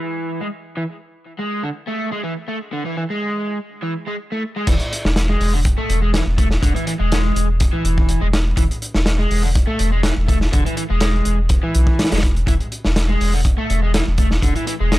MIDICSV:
0, 0, Header, 1, 4, 480
1, 0, Start_track
1, 0, Tempo, 487805
1, 759, Time_signature, 4, 2, 24, 8
1, 14749, End_track
2, 0, Start_track
2, 0, Title_t, "Overdriven electric guitar"
2, 0, Program_c, 0, 29
2, 0, Note_on_c, 0, 52, 70
2, 394, Note_off_c, 0, 52, 0
2, 405, Note_on_c, 0, 56, 97
2, 454, Note_off_c, 0, 56, 0
2, 756, Note_on_c, 0, 52, 75
2, 812, Note_off_c, 0, 52, 0
2, 1364, Note_on_c, 0, 56, 76
2, 1593, Note_off_c, 0, 56, 0
2, 1604, Note_on_c, 0, 50, 76
2, 1653, Note_off_c, 0, 50, 0
2, 1842, Note_on_c, 0, 57, 96
2, 2071, Note_off_c, 0, 57, 0
2, 2083, Note_on_c, 0, 56, 71
2, 2165, Note_off_c, 0, 56, 0
2, 2197, Note_on_c, 0, 52, 80
2, 2289, Note_off_c, 0, 52, 0
2, 2439, Note_on_c, 0, 57, 69
2, 2530, Note_off_c, 0, 57, 0
2, 2681, Note_on_c, 0, 50, 77
2, 2794, Note_off_c, 0, 50, 0
2, 2809, Note_on_c, 0, 52, 74
2, 2909, Note_off_c, 0, 52, 0
2, 2924, Note_on_c, 0, 52, 74
2, 2976, Note_off_c, 0, 52, 0
2, 3053, Note_on_c, 0, 56, 73
2, 3517, Note_off_c, 0, 56, 0
2, 3767, Note_on_c, 0, 52, 73
2, 3868, Note_off_c, 0, 52, 0
2, 4010, Note_on_c, 0, 56, 72
2, 4088, Note_off_c, 0, 56, 0
2, 4250, Note_on_c, 0, 57, 72
2, 4349, Note_off_c, 0, 57, 0
2, 4488, Note_on_c, 0, 56, 74
2, 4588, Note_off_c, 0, 56, 0
2, 4602, Note_on_c, 0, 52, 79
2, 4655, Note_off_c, 0, 52, 0
2, 5208, Note_on_c, 0, 56, 79
2, 5434, Note_off_c, 0, 56, 0
2, 5447, Note_on_c, 0, 50, 80
2, 5495, Note_off_c, 0, 50, 0
2, 5685, Note_on_c, 0, 57, 99
2, 5913, Note_off_c, 0, 57, 0
2, 5926, Note_on_c, 0, 56, 75
2, 6007, Note_off_c, 0, 56, 0
2, 6037, Note_on_c, 0, 52, 82
2, 6129, Note_off_c, 0, 52, 0
2, 6275, Note_on_c, 0, 57, 72
2, 6368, Note_off_c, 0, 57, 0
2, 6515, Note_on_c, 0, 50, 83
2, 6632, Note_off_c, 0, 50, 0
2, 6643, Note_on_c, 0, 52, 81
2, 6746, Note_off_c, 0, 52, 0
2, 6758, Note_on_c, 0, 52, 81
2, 6813, Note_off_c, 0, 52, 0
2, 6883, Note_on_c, 0, 56, 77
2, 7352, Note_off_c, 0, 56, 0
2, 7605, Note_on_c, 0, 52, 76
2, 8073, Note_off_c, 0, 52, 0
2, 8082, Note_on_c, 0, 56, 103
2, 8132, Note_off_c, 0, 56, 0
2, 8436, Note_on_c, 0, 52, 80
2, 8492, Note_off_c, 0, 52, 0
2, 9043, Note_on_c, 0, 56, 82
2, 9272, Note_off_c, 0, 56, 0
2, 9282, Note_on_c, 0, 50, 79
2, 9332, Note_off_c, 0, 50, 0
2, 9519, Note_on_c, 0, 57, 103
2, 9750, Note_off_c, 0, 57, 0
2, 9763, Note_on_c, 0, 56, 76
2, 9845, Note_off_c, 0, 56, 0
2, 9874, Note_on_c, 0, 52, 80
2, 9968, Note_off_c, 0, 52, 0
2, 10114, Note_on_c, 0, 57, 75
2, 10208, Note_off_c, 0, 57, 0
2, 10355, Note_on_c, 0, 50, 81
2, 10472, Note_off_c, 0, 50, 0
2, 10485, Note_on_c, 0, 52, 81
2, 10584, Note_off_c, 0, 52, 0
2, 10596, Note_on_c, 0, 52, 79
2, 10652, Note_off_c, 0, 52, 0
2, 10723, Note_on_c, 0, 56, 79
2, 11192, Note_off_c, 0, 56, 0
2, 11445, Note_on_c, 0, 52, 72
2, 11913, Note_off_c, 0, 52, 0
2, 11925, Note_on_c, 0, 56, 105
2, 11974, Note_off_c, 0, 56, 0
2, 12279, Note_on_c, 0, 52, 79
2, 12334, Note_off_c, 0, 52, 0
2, 12881, Note_on_c, 0, 56, 82
2, 13111, Note_off_c, 0, 56, 0
2, 13123, Note_on_c, 0, 50, 76
2, 13173, Note_off_c, 0, 50, 0
2, 13363, Note_on_c, 0, 57, 99
2, 13592, Note_off_c, 0, 57, 0
2, 13605, Note_on_c, 0, 56, 75
2, 13686, Note_off_c, 0, 56, 0
2, 13715, Note_on_c, 0, 52, 80
2, 13808, Note_off_c, 0, 52, 0
2, 13954, Note_on_c, 0, 57, 72
2, 14048, Note_off_c, 0, 57, 0
2, 14195, Note_on_c, 0, 50, 82
2, 14312, Note_off_c, 0, 50, 0
2, 14325, Note_on_c, 0, 52, 80
2, 14427, Note_off_c, 0, 52, 0
2, 14437, Note_on_c, 0, 52, 80
2, 14493, Note_off_c, 0, 52, 0
2, 14566, Note_on_c, 0, 56, 80
2, 14749, Note_off_c, 0, 56, 0
2, 14749, End_track
3, 0, Start_track
3, 0, Title_t, "Sub bass"
3, 0, Program_c, 1, 38
3, 4599, Note_on_c, 1, 28, 101
3, 4693, Note_off_c, 1, 28, 0
3, 4967, Note_on_c, 1, 28, 103
3, 5272, Note_off_c, 1, 28, 0
3, 5318, Note_on_c, 1, 28, 79
3, 5633, Note_off_c, 1, 28, 0
3, 5798, Note_on_c, 1, 28, 98
3, 6113, Note_off_c, 1, 28, 0
3, 6164, Note_on_c, 1, 28, 95
3, 6471, Note_off_c, 1, 28, 0
3, 6520, Note_on_c, 1, 28, 100
3, 6614, Note_off_c, 1, 28, 0
3, 6887, Note_on_c, 1, 28, 101
3, 7192, Note_off_c, 1, 28, 0
3, 7240, Note_on_c, 1, 28, 83
3, 7554, Note_off_c, 1, 28, 0
3, 7718, Note_on_c, 1, 28, 96
3, 8033, Note_off_c, 1, 28, 0
3, 8086, Note_on_c, 1, 28, 92
3, 8392, Note_off_c, 1, 28, 0
3, 8433, Note_on_c, 1, 28, 100
3, 8530, Note_off_c, 1, 28, 0
3, 8804, Note_on_c, 1, 28, 101
3, 9111, Note_off_c, 1, 28, 0
3, 9158, Note_on_c, 1, 28, 80
3, 9473, Note_off_c, 1, 28, 0
3, 9639, Note_on_c, 1, 28, 102
3, 9953, Note_off_c, 1, 28, 0
3, 10007, Note_on_c, 1, 28, 92
3, 10313, Note_off_c, 1, 28, 0
3, 10367, Note_on_c, 1, 28, 98
3, 10457, Note_off_c, 1, 28, 0
3, 10727, Note_on_c, 1, 28, 104
3, 11032, Note_off_c, 1, 28, 0
3, 11081, Note_on_c, 1, 28, 80
3, 11394, Note_off_c, 1, 28, 0
3, 11560, Note_on_c, 1, 35, 90
3, 11654, Note_off_c, 1, 35, 0
3, 11926, Note_on_c, 1, 28, 93
3, 12232, Note_off_c, 1, 28, 0
3, 12270, Note_on_c, 1, 28, 101
3, 12369, Note_off_c, 1, 28, 0
3, 12647, Note_on_c, 1, 28, 102
3, 12952, Note_off_c, 1, 28, 0
3, 12997, Note_on_c, 1, 28, 82
3, 13312, Note_off_c, 1, 28, 0
3, 13478, Note_on_c, 1, 28, 98
3, 13793, Note_off_c, 1, 28, 0
3, 13848, Note_on_c, 1, 28, 92
3, 14153, Note_off_c, 1, 28, 0
3, 14195, Note_on_c, 1, 28, 97
3, 14291, Note_off_c, 1, 28, 0
3, 14567, Note_on_c, 1, 28, 99
3, 14749, Note_off_c, 1, 28, 0
3, 14749, End_track
4, 0, Start_track
4, 0, Title_t, "Drums"
4, 4596, Note_on_c, 9, 42, 91
4, 4598, Note_on_c, 9, 36, 117
4, 4600, Note_on_c, 9, 49, 94
4, 4695, Note_off_c, 9, 42, 0
4, 4696, Note_off_c, 9, 36, 0
4, 4699, Note_off_c, 9, 49, 0
4, 4720, Note_on_c, 9, 42, 44
4, 4818, Note_off_c, 9, 42, 0
4, 4848, Note_on_c, 9, 42, 72
4, 4946, Note_off_c, 9, 42, 0
4, 4970, Note_on_c, 9, 38, 65
4, 5069, Note_off_c, 9, 38, 0
4, 5078, Note_on_c, 9, 38, 111
4, 5083, Note_on_c, 9, 42, 83
4, 5176, Note_off_c, 9, 38, 0
4, 5182, Note_off_c, 9, 42, 0
4, 5321, Note_on_c, 9, 46, 78
4, 5419, Note_off_c, 9, 46, 0
4, 5559, Note_on_c, 9, 42, 87
4, 5561, Note_on_c, 9, 36, 103
4, 5657, Note_off_c, 9, 42, 0
4, 5660, Note_off_c, 9, 36, 0
4, 5802, Note_on_c, 9, 42, 73
4, 5900, Note_off_c, 9, 42, 0
4, 6040, Note_on_c, 9, 38, 109
4, 6042, Note_on_c, 9, 42, 83
4, 6139, Note_off_c, 9, 38, 0
4, 6140, Note_off_c, 9, 42, 0
4, 6279, Note_on_c, 9, 36, 103
4, 6279, Note_on_c, 9, 42, 74
4, 6378, Note_off_c, 9, 36, 0
4, 6378, Note_off_c, 9, 42, 0
4, 6402, Note_on_c, 9, 38, 43
4, 6500, Note_off_c, 9, 38, 0
4, 6520, Note_on_c, 9, 36, 118
4, 6524, Note_on_c, 9, 42, 86
4, 6619, Note_off_c, 9, 36, 0
4, 6623, Note_off_c, 9, 42, 0
4, 6653, Note_on_c, 9, 42, 42
4, 6751, Note_off_c, 9, 42, 0
4, 6761, Note_on_c, 9, 42, 74
4, 6859, Note_off_c, 9, 42, 0
4, 7004, Note_on_c, 9, 42, 92
4, 7009, Note_on_c, 9, 38, 119
4, 7102, Note_off_c, 9, 42, 0
4, 7108, Note_off_c, 9, 38, 0
4, 7245, Note_on_c, 9, 42, 70
4, 7344, Note_off_c, 9, 42, 0
4, 7479, Note_on_c, 9, 42, 90
4, 7486, Note_on_c, 9, 36, 114
4, 7578, Note_off_c, 9, 42, 0
4, 7584, Note_off_c, 9, 36, 0
4, 7724, Note_on_c, 9, 42, 65
4, 7822, Note_off_c, 9, 42, 0
4, 7850, Note_on_c, 9, 36, 99
4, 7948, Note_off_c, 9, 36, 0
4, 7957, Note_on_c, 9, 42, 89
4, 8056, Note_off_c, 9, 42, 0
4, 8201, Note_on_c, 9, 38, 107
4, 8201, Note_on_c, 9, 42, 66
4, 8299, Note_off_c, 9, 38, 0
4, 8299, Note_off_c, 9, 42, 0
4, 8433, Note_on_c, 9, 36, 115
4, 8434, Note_on_c, 9, 42, 97
4, 8531, Note_off_c, 9, 36, 0
4, 8532, Note_off_c, 9, 42, 0
4, 8572, Note_on_c, 9, 42, 46
4, 8670, Note_off_c, 9, 42, 0
4, 8679, Note_on_c, 9, 42, 65
4, 8778, Note_off_c, 9, 42, 0
4, 8802, Note_on_c, 9, 38, 60
4, 8900, Note_off_c, 9, 38, 0
4, 8913, Note_on_c, 9, 38, 125
4, 8921, Note_on_c, 9, 42, 84
4, 9012, Note_off_c, 9, 38, 0
4, 9020, Note_off_c, 9, 42, 0
4, 9159, Note_on_c, 9, 46, 82
4, 9258, Note_off_c, 9, 46, 0
4, 9401, Note_on_c, 9, 42, 90
4, 9403, Note_on_c, 9, 36, 118
4, 9499, Note_off_c, 9, 42, 0
4, 9501, Note_off_c, 9, 36, 0
4, 9634, Note_on_c, 9, 42, 77
4, 9733, Note_off_c, 9, 42, 0
4, 9873, Note_on_c, 9, 38, 125
4, 9876, Note_on_c, 9, 42, 92
4, 9971, Note_off_c, 9, 38, 0
4, 9974, Note_off_c, 9, 42, 0
4, 10121, Note_on_c, 9, 36, 104
4, 10127, Note_on_c, 9, 42, 77
4, 10219, Note_off_c, 9, 36, 0
4, 10225, Note_off_c, 9, 42, 0
4, 10245, Note_on_c, 9, 38, 43
4, 10343, Note_off_c, 9, 38, 0
4, 10361, Note_on_c, 9, 42, 83
4, 10366, Note_on_c, 9, 36, 117
4, 10460, Note_off_c, 9, 42, 0
4, 10465, Note_off_c, 9, 36, 0
4, 10493, Note_on_c, 9, 42, 43
4, 10591, Note_off_c, 9, 42, 0
4, 10598, Note_on_c, 9, 42, 66
4, 10696, Note_off_c, 9, 42, 0
4, 10829, Note_on_c, 9, 42, 81
4, 10834, Note_on_c, 9, 38, 111
4, 10927, Note_off_c, 9, 42, 0
4, 10933, Note_off_c, 9, 38, 0
4, 11073, Note_on_c, 9, 42, 65
4, 11171, Note_off_c, 9, 42, 0
4, 11308, Note_on_c, 9, 42, 85
4, 11315, Note_on_c, 9, 36, 106
4, 11406, Note_off_c, 9, 42, 0
4, 11414, Note_off_c, 9, 36, 0
4, 11557, Note_on_c, 9, 42, 70
4, 11656, Note_off_c, 9, 42, 0
4, 11678, Note_on_c, 9, 36, 93
4, 11776, Note_off_c, 9, 36, 0
4, 11799, Note_on_c, 9, 42, 65
4, 11801, Note_on_c, 9, 38, 95
4, 11852, Note_off_c, 9, 38, 0
4, 11852, Note_on_c, 9, 38, 97
4, 11856, Note_off_c, 9, 42, 0
4, 11856, Note_on_c, 9, 42, 68
4, 11925, Note_off_c, 9, 42, 0
4, 11925, Note_on_c, 9, 42, 68
4, 11930, Note_off_c, 9, 38, 0
4, 11930, Note_on_c, 9, 38, 99
4, 11978, Note_off_c, 9, 42, 0
4, 11978, Note_on_c, 9, 42, 66
4, 11986, Note_off_c, 9, 38, 0
4, 11986, Note_on_c, 9, 38, 90
4, 12034, Note_on_c, 9, 36, 103
4, 12037, Note_off_c, 9, 42, 0
4, 12037, Note_on_c, 9, 42, 79
4, 12085, Note_off_c, 9, 38, 0
4, 12132, Note_off_c, 9, 36, 0
4, 12135, Note_off_c, 9, 42, 0
4, 12167, Note_on_c, 9, 42, 38
4, 12265, Note_off_c, 9, 42, 0
4, 12270, Note_on_c, 9, 36, 116
4, 12280, Note_on_c, 9, 42, 87
4, 12369, Note_off_c, 9, 36, 0
4, 12379, Note_off_c, 9, 42, 0
4, 12403, Note_on_c, 9, 42, 41
4, 12501, Note_off_c, 9, 42, 0
4, 12515, Note_on_c, 9, 42, 63
4, 12613, Note_off_c, 9, 42, 0
4, 12640, Note_on_c, 9, 38, 56
4, 12739, Note_off_c, 9, 38, 0
4, 12754, Note_on_c, 9, 38, 115
4, 12755, Note_on_c, 9, 42, 90
4, 12852, Note_off_c, 9, 38, 0
4, 12854, Note_off_c, 9, 42, 0
4, 12998, Note_on_c, 9, 46, 89
4, 13096, Note_off_c, 9, 46, 0
4, 13234, Note_on_c, 9, 36, 110
4, 13234, Note_on_c, 9, 42, 92
4, 13332, Note_off_c, 9, 42, 0
4, 13333, Note_off_c, 9, 36, 0
4, 13480, Note_on_c, 9, 42, 75
4, 13579, Note_off_c, 9, 42, 0
4, 13718, Note_on_c, 9, 42, 86
4, 13721, Note_on_c, 9, 38, 117
4, 13816, Note_off_c, 9, 42, 0
4, 13819, Note_off_c, 9, 38, 0
4, 13951, Note_on_c, 9, 42, 69
4, 13955, Note_on_c, 9, 36, 100
4, 14050, Note_off_c, 9, 42, 0
4, 14053, Note_off_c, 9, 36, 0
4, 14080, Note_on_c, 9, 38, 43
4, 14178, Note_off_c, 9, 38, 0
4, 14194, Note_on_c, 9, 36, 101
4, 14198, Note_on_c, 9, 42, 83
4, 14292, Note_off_c, 9, 36, 0
4, 14297, Note_off_c, 9, 42, 0
4, 14324, Note_on_c, 9, 42, 43
4, 14422, Note_off_c, 9, 42, 0
4, 14438, Note_on_c, 9, 42, 73
4, 14536, Note_off_c, 9, 42, 0
4, 14681, Note_on_c, 9, 38, 113
4, 14683, Note_on_c, 9, 42, 83
4, 14749, Note_off_c, 9, 38, 0
4, 14749, Note_off_c, 9, 42, 0
4, 14749, End_track
0, 0, End_of_file